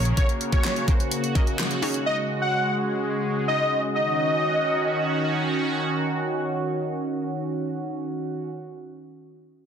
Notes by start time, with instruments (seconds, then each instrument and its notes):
Already playing: fingered electric bass A#1, analog synth pad C#3 A#3 F#4, synth pluck A#3 C#4 F#4 A#4 C#5
0.05 closed hi-hat
0.17 analog synth lead C#5, kick, closed hi-hat
0.29 closed hi-hat
0.41 closed hi-hat
0.52 synth pluck A#3 C#4 F#4 A#4 C#5, analog synth lead C#5, kick, closed hi-hat
0.64 snare, clap, closed hi-hat
0.76 closed hi-hat
0.88 synth pluck A#3 C#4 F#4 A#4 C5, kick, closed hi-hat
1.00 closed hi-hat
1.11 closed hi-hat
1.24 closed hi-hat
1.35 synth pluck A#3 C#4 F#4 A#4 D#5, kick, closed hi-hat
1.47 closed hi-hat
1.59 snare, clap, closed hi-hat
1.71 closed hi-hat
1.82 analog synth pad G#3, synth pluck C#4 D#4 F#4 G#4 C#5, open hi-hat
1.94 closed hi-hat
2.06 analog synth lead D#5
2.42 analog synth lead F#5
3.48 analog synth lead D#5
3.95 analog synth pad D#3 C#4 F#4, analog synth lead D#5